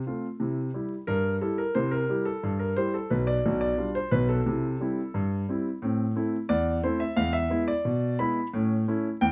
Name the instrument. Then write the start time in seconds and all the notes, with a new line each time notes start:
grand piano
0.07 A3 C4 F4
0.40 C3 E4
0.74 G3 E4 G4
1.07 G2 A#4
1.41 G3 E4 G4 A4
1.58 A#4
1.75 C3 E4 C5
1.91 A#4
2.09 G3 E4 G4
2.25 A4
2.43 G2
2.59 A#4
2.77 G3 E4 G4 C5
2.94 A4
3.10 B1 B2 B4
3.27 D5
3.45 B1 B2
3.61 D5
3.78 G3 D4 F4
3.95 C5
4.11 B1 B2 B4
4.29 A4
4.46 C3 E4
4.80 G3 C4 E4
5.14 G2
5.49 G3 C4 E4
5.82 A2 C4
6.16 A3 C4 E4
6.49 E2 D5
6.83 A3 C4 E4 C5
7.00 E5
7.16 E2 G#3 F5
7.33 E5
7.50 G#3 B3 E4
7.68 D5
7.85 B2
8.19 G#3 B3 E4 B5
8.53 A2 C#4
8.88 A3 C#4 E4
9.21 E2 G5